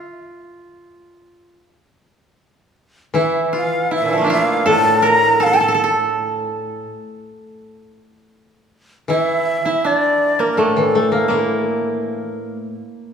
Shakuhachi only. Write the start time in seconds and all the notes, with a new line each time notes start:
3.17 E5
3.57 F5
3.95 E5
4.33 F5
4.70 A5
5.07 A#5
5.43 A5
9.10 E5
9.86 D5
10.40 A#4
10.52 A#4
10.59 A4